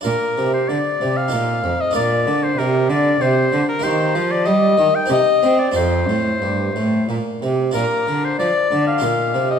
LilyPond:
<<
  \new Staff \with { instrumentName = "Oboe" } { \time 3/4 \key bes \major \tempo 4 = 94 bes'8. c''16 d''8. f''4 ees''16 | d''8. c''16 bes'8 d''8 c''8. bes'16 | c''8. d''16 ees''8. g''16 ees''8. d''16 | c''2 r4 |
bes'8. c''16 d''8. f''4 ees''16 | }
  \new Staff \with { instrumentName = "Harpsichord" } { \time 3/4 \key bes \major <d' f' bes'>2 <ees' f' a'>4 | <d' f' bes'>2. | <bes ees' g'>2 <c' ees' g'>4 | <c' f' a'>2. |
<d' f' bes'>2 <ees' f' a'>4 | }
  \new Staff \with { instrumentName = "Harpsichord" } { \clef bass \time 3/4 \key bes \major bes,8 c8 d8 c8 bes,8 f,8 | bes,8 d8 c8 d8 c8 d8 | ees8 f8 g8 ees8 c8 c'8 | f,8 a,8 g,8 a,8 bes,8 c8 |
bes,8 d8 f8 d8 bes,8 c8 | }
  \new Staff \with { instrumentName = "Cello" } { \clef bass \time 3/4 \key bes \major bes,8 c8 d8 c8 bes,8 f,8 | bes,8 d8 c8 d8 c8 d8 | ees8 f8 g8 ees8 c8 c'8 | f,8 a,8 g,8 a,8 bes,8 c8 |
bes,8 d8 f8 d8 bes,8 c8 | }
>>